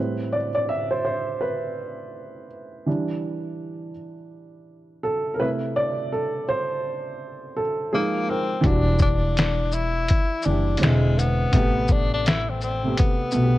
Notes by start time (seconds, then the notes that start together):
Already playing: A2 B4
0.00 G3 C4
0.33 D5
0.55 D5
0.69 E5
0.91 C5
1.05 C5
1.41 B4
2.86 E3 G3 D4
5.03 A4
5.34 A#4
5.39 C3 A3 E4 B4
5.76 D5
6.12 A4
6.49 C5
7.56 A4
7.93 F3 G#3 A#3 D#4 G#4
8.29 C4 A#4
8.61 E1 E3 G3 D4, kick, closed hi-hat
8.66 D4 F#4
8.99 D4, kick, shaker
9.37 finger snap, snare, closed hi-hat
9.72 E4, shaker
10.08 kick, closed hi-hat
10.42 F#1 E3 D4, shaker
10.47 G3 D4 G4
10.77 D3 G#3 C4, closed hi-hat
10.82 E1 G#3 E4, finger snap, snare
11.19 B3, closed hi-hat, shaker
11.52 A1 C3 A3 B3, kick, closed hi-hat
11.56 G4
11.88 D4, kick, shaker
12.14 D4
12.26 E4, finger snap, snare, closed hi-hat
12.50 C4
12.61 C4, shaker
12.83 C3 A3 B3
12.88 G4
12.98 B3, kick, closed hi-hat
13.31 B1 B2 A3 B3, shaker
13.37 F#4
13.43 G4